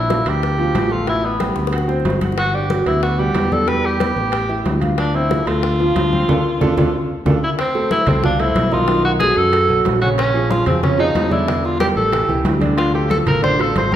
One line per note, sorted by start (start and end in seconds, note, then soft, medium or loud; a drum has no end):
0.00 0.20 A#1 medium
0.00 0.30 E4 medium
0.10 0.23 F3 medium
0.10 0.23 F4 medium
0.10 high bongo medium
0.10 high conga medium
0.10 high timbale medium
0.10 low timbale medium
0.26 0.71 D2 medium
0.26 0.53 A#3 medium
0.26 0.94 G4 loud
0.26 0.53 A#4 medium
0.26 high bongo soft
0.26 high conga soft
0.26 high timbale loud
0.43 high bongo medium
0.43 high conga soft
0.58 0.85 F3 medium
0.58 0.85 F4 medium
0.58 high bongo soft
0.58 high conga soft
0.75 1.51 A1 loud
0.75 high bongo soft
0.75 low bongo medium
0.75 high conga medium
0.75 high timbale loud
0.75 low timbale medium
0.91 1.05 A3 medium
0.91 1.08 F4 medium
0.91 1.05 A4 medium
0.91 high bongo soft
1.07 1.34 E3 medium
1.07 1.34 E4 medium
1.07 1.27 E4 medium
1.07 high bongo medium
1.07 high conga soft
1.07 high timbale medium
1.25 1.73 B3 medium
1.25 high conga soft
1.40 1.67 G3 medium
1.40 1.67 G4 medium
1.40 high bongo medium
1.40 high conga medium
1.40 high timbale medium
1.40 low timbale medium
1.56 2.02 D2 medium
1.56 high bongo loud
1.56 high conga soft
1.67 high bongo medium
1.72 1.86 F#4 medium
1.72 1.86 F#5 medium
1.72 high conga soft
1.72 high timbale loud
1.78 high bongo medium
1.88 2.15 C4 medium
1.88 2.16 C5 medium
1.88 low bongo medium
1.88 high conga soft
2.00 low bongo medium
2.05 2.81 G1 medium
2.05 high conga medium
2.05 high timbale medium
2.05 low timbale medium
2.10 low bongo medium
2.21 2.48 F#4 medium
2.21 2.49 F#5 medium
2.21 low bongo medium
2.21 high conga medium
2.21 high timbale medium
2.32 low bongo medium
2.38 2.57 F#4 loud
2.38 high bongo medium
2.38 high conga soft
2.38 high timbale medium
2.54 2.68 D4 medium
2.54 2.87 G4 medium
2.54 2.68 D5 medium
2.54 high conga soft
2.70 2.83 F#3 medium
2.70 2.84 F#4 medium
2.70 high bongo medium
2.70 high conga medium
2.70 high timbale medium
2.70 low timbale medium
2.86 3.32 D2 medium
2.86 3.13 B3 medium
2.86 3.02 E4 medium
2.86 3.13 B4 medium
2.86 high bongo soft
2.86 high conga soft
2.86 high timbale medium
3.03 3.21 F#4 medium
3.03 high bongo medium
3.03 high conga soft
3.19 3.46 G3 medium
3.19 3.54 G4 loud
3.19 3.46 F#5 medium
3.19 high bongo soft
3.19 high conga soft
3.35 4.11 E2 medium
3.35 high bongo soft
3.35 low bongo medium
3.35 high conga medium
3.35 high timbale medium
3.35 low timbale medium
3.52 3.65 D4 medium
3.52 3.70 A4 medium
3.52 3.65 D5 medium
3.52 high bongo soft
3.52 high conga medium
3.67 3.95 G3 medium
3.67 3.95 G4 medium
3.67 3.87 B4 loud
3.67 high bongo medium
3.67 high timbale medium
3.85 4.83 G4 loud
3.85 high conga soft
4.00 4.27 B3 medium
4.00 4.27 B4 medium
4.00 high bongo medium
4.00 high conga medium
4.00 high timbale medium
4.00 low timbale medium
4.16 4.62 A1 medium
4.16 high bongo soft
4.16 high conga soft
4.32 4.46 G4 medium
4.32 4.46 G5 medium
4.32 high bongo medium
4.32 high conga soft
4.32 high timbale medium
4.49 4.76 E4 medium
4.49 4.76 E5 medium
4.49 high bongo soft
4.49 high conga soft
4.65 5.41 D2 medium
4.65 high bongo soft
4.65 low bongo medium
4.65 high conga medium
4.65 high timbale medium
4.65 low timbale medium
4.81 5.08 F4 medium
4.81 5.08 F5 medium
4.81 high bongo soft
4.81 high conga medium
4.81 high timbale medium
4.98 5.18 D4 medium
4.98 high bongo medium
4.98 high conga soft
4.98 high timbale loud
5.14 5.28 C4 medium
5.14 5.49 E4 medium
5.14 5.28 C5 medium
5.14 high conga soft
5.31 5.44 F3 medium
5.31 5.44 F4 medium
5.31 high bongo medium
5.31 high conga medium
5.31 high timbale medium
5.31 low timbale medium
5.46 5.92 D2 medium
5.46 5.74 A3 medium
5.46 7.26 F4 medium
5.46 5.75 A4 medium
5.46 high bongo soft
5.46 high conga soft
5.46 high timbale loud
5.63 high bongo medium
5.63 high conga soft
5.80 6.07 F3 medium
5.80 6.07 F4 medium
5.80 high bongo soft
5.80 high conga soft
5.95 6.26 D2 loud
5.95 high bongo soft
5.95 low bongo medium
5.95 high conga loud
5.95 high timbale loud
5.95 low timbale medium
6.13 6.26 C4 medium
6.13 6.26 C5 medium
6.13 high bongo soft
6.13 high conga medium
6.28 6.41 D2 medium
6.28 6.39 D4 medium
6.28 6.39 F4 medium
6.28 6.39 A4 medium
6.28 low bongo loud
6.28 low conga medium
6.28 high timbale loud
6.60 6.73 D2 loud
6.60 6.71 D4 loud
6.60 6.71 F4 medium
6.60 6.72 A4 loud
6.60 low bongo loud
6.60 low conga loud
6.60 high timbale medium
6.77 6.89 D2 medium
6.77 6.88 D4 medium
6.77 6.88 F4 medium
6.77 6.88 A4 medium
6.77 low bongo loud
6.77 low conga loud
6.77 high timbale loud
7.25 7.38 D2 loud
7.25 7.36 D4 medium
7.25 7.37 F4 medium
7.25 7.37 A4 medium
7.25 low bongo loud
7.25 low conga loud
7.25 high timbale loud
7.44 7.51 E4 medium
7.59 7.90 C4 loud
7.59 high bongo medium
7.59 high conga soft
7.59 high timbale loud
7.75 8.02 A3 medium
7.75 8.02 A4 medium
7.75 8.02 C5 medium
7.75 high bongo soft
7.75 high conga soft
7.91 8.10 E4 loud
7.91 high bongo medium
7.91 high conga loud
7.91 high timbale medium
7.91 low timbale medium
8.07 8.52 C2 loud
8.07 8.21 A3 medium
8.07 8.24 C4 medium
8.07 8.21 A4 medium
8.07 8.21 C5 medium
8.07 high conga soft
8.07 low conga medium
8.07 high timbale medium
8.23 8.37 F3 medium
8.23 8.42 D4 medium
8.23 8.37 F4 medium
8.23 8.37 F5 medium
8.23 high bongo medium
8.23 high conga soft
8.23 low conga medium
8.40 8.66 A3 medium
8.40 8.74 E4 loud
8.40 8.67 A4 medium
8.40 8.67 C5 medium
8.40 high bongo soft
8.40 high conga soft
8.40 high timbale medium
8.55 9.31 B1 medium
8.55 high bongo soft
8.55 low bongo medium
8.55 high conga loud
8.55 high timbale loud
8.55 low timbale medium
8.72 8.86 D#3 medium
8.72 8.86 D#4 medium
8.72 9.04 F4 loud
8.72 8.86 D#5 medium
8.72 high bongo soft
8.72 high conga medium
8.88 9.15 D#3 medium
8.88 9.15 D#4 medium
8.88 9.15 D#5 medium
8.88 high bongo medium
8.88 high conga soft
8.88 high timbale medium
9.04 9.12 F#4 medium
9.04 high bongo soft
9.04 high conga soft
9.20 9.47 F#3 medium
9.20 9.47 F#4 medium
9.20 9.39 G#4 loud
9.20 9.47 A4 medium
9.20 high bongo medium
9.20 high conga loud
9.20 high timbale medium
9.20 low timbale medium
9.37 9.67 F#2 medium
9.37 9.86 A4 loud
9.37 high conga soft
9.53 9.66 F#3 medium
9.53 9.67 F#4 medium
9.53 9.67 A4 medium
9.53 high bongo medium
9.53 high conga soft
9.53 high timbale medium
9.69 9.84 B1 medium
9.69 9.96 F#3 medium
9.69 9.96 F#4 medium
9.69 9.96 A4 medium
9.69 high bongo soft
9.69 high conga soft
9.85 10.61 A#1 medium
9.85 high bongo soft
9.85 low bongo medium
9.85 high conga medium
9.85 high timbale medium
9.85 low timbale medium
10.01 10.28 C#3 medium
10.01 10.29 C#4 medium
10.01 10.09 F#4 medium
10.01 10.29 C#5 medium
10.01 high bongo soft
10.01 high timbale medium
10.18 10.52 C#4 loud
10.18 high bongo medium
10.18 high conga soft
10.18 high timbale medium
10.34 10.61 F3 medium
10.34 10.61 F4 medium
10.34 10.61 G#4 medium
10.34 high bongo soft
10.34 high conga soft
10.50 10.66 F4 loud
10.50 high bongo medium
10.50 high conga medium
10.50 high timbale medium
10.50 low timbale medium
10.66 11.12 F2 medium
10.66 10.80 F3 medium
10.66 10.82 C4 medium
10.66 10.80 F4 medium
10.66 10.80 G#4 medium
10.66 high conga soft
10.66 low conga medium
10.66 high timbale loud
10.83 10.96 C#3 medium
10.83 10.98 C#4 medium
10.83 10.96 C#4 medium
10.83 10.97 C#5 medium
10.83 high bongo medium
10.83 high conga soft
10.83 low conga medium
10.98 11.25 F3 medium
10.98 11.34 D#4 loud
10.98 11.26 F4 medium
10.98 11.26 G#4 medium
10.98 high bongo soft
10.98 high conga soft
10.98 high timbale medium
11.15 11.91 E2 medium
11.15 high bongo soft
11.15 low bongo medium
11.15 high conga medium
11.15 high timbale loud
11.15 low timbale medium
11.31 11.44 D3 medium
11.31 11.45 D4 medium
11.31 11.67 E4 medium
11.31 11.45 D5 medium
11.31 high bongo soft
11.31 high conga medium
11.47 11.74 D3 medium
11.47 11.74 D4 medium
11.47 11.75 D5 medium
11.47 high bongo medium
11.47 high conga soft
11.47 high timbale medium
11.64 11.80 F4 medium
11.64 high bongo soft
11.64 high conga soft
11.80 12.07 G3 medium
11.80 11.88 G4 loud
11.80 12.07 G4 medium
11.80 12.07 A#4 medium
11.80 high bongo medium
11.80 high conga loud
11.80 high timbale loud
11.80 low timbale medium
11.96 12.27 A1 loud
11.96 12.42 A4 medium
11.96 high conga soft
12.12 12.26 E3 medium
12.12 12.26 E4 medium
12.12 12.26 G4 medium
12.12 high bongo medium
12.12 high conga soft
12.12 high timbale medium
12.28 12.44 C#2 medium
12.28 12.55 E3 medium
12.28 12.56 E4 medium
12.28 12.56 G4 medium
12.28 high bongo soft
12.28 high conga soft
12.45 13.21 D2 loud
12.45 high bongo soft
12.45 low bongo medium
12.45 high conga medium
12.45 high timbale medium
12.45 low timbale medium
12.60 12.88 D3 medium
12.60 12.88 D4 medium
12.60 12.88 D5 medium
12.60 high bongo soft
12.60 high conga medium
12.60 high timbale medium
12.77 12.93 F4 loud
12.77 high bongo medium
12.77 high conga soft
12.77 high timbale loud
12.94 13.21 F3 medium
12.94 13.21 F4 medium
12.94 13.10 G4 medium
12.94 13.21 A4 medium
12.94 high bongo soft
12.94 high conga soft
13.10 13.18 A4 medium
13.10 high bongo medium
13.10 high conga loud
13.10 high timbale medium
13.10 low timbale medium
13.26 13.72 A1 medium
13.26 13.40 F3 medium
13.26 13.40 F4 medium
13.26 13.40 A4 medium
13.26 13.43 A#4 medium
13.26 high conga soft
13.26 low conga medium
13.26 high timbale loud
13.42 13.56 D3 medium
13.42 13.56 D4 medium
13.42 13.63 C5 loud
13.42 13.56 D5 medium
13.42 high bongo medium
13.42 high conga soft
13.42 low conga medium
13.59 13.86 F3 medium
13.59 13.86 F4 medium
13.59 13.86 A4 medium
13.59 13.77 A4 loud
13.59 high bongo soft
13.59 high conga soft
13.59 high timbale medium
13.76 13.96 G#1 loud
13.76 13.92 C5 medium
13.76 high bongo soft
13.76 low bongo medium
13.76 high conga medium
13.76 high timbale loud
13.76 low timbale medium
13.92 13.96 C3 medium
13.92 13.96 C4 medium
13.92 13.96 C5 medium
13.92 high bongo soft
13.92 high conga medium